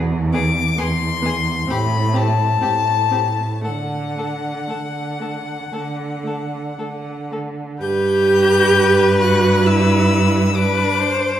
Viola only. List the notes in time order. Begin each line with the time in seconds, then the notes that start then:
0.33 B3
0.78 B3
1.22 B3
1.68 C4
2.14 C4
2.60 C4
3.11 C4
3.62 A3
4.16 A3
4.67 A3
5.20 A3
5.72 A3
6.24 A3
6.78 A3
7.31 A3
7.80 G4
9.20 F#4
9.66 E4
10.55 D4